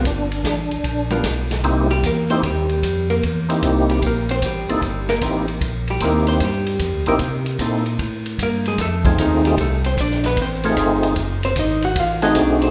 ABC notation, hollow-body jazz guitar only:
X:1
M:4/4
L:1/8
Q:"Swing" 1/4=151
K:F
V:1 name="Hollow-body jazz guitar"
z4 z [G,=B,F^A] z2 | z [G,G] [B,B] [Cc] [G,G]3 [B,B] | z3 [G,G] [B,B] [Cc] [G,G]2- | [G,G] [B,B] z3 [G,G] [B,B] [Cc] |
[G,G]3 [B,B] z4 | z2 [B,B] [^G,^G] [A,A] [C,C] [_E,_E] [=G,=G] | [A,A] [Cc] [Dd] [=B,=B] [Cc] [A,A] z2 | z [Cc] [^D^d] [^F^f] [=F=f] [Dd] [=D=d] [Cc] |]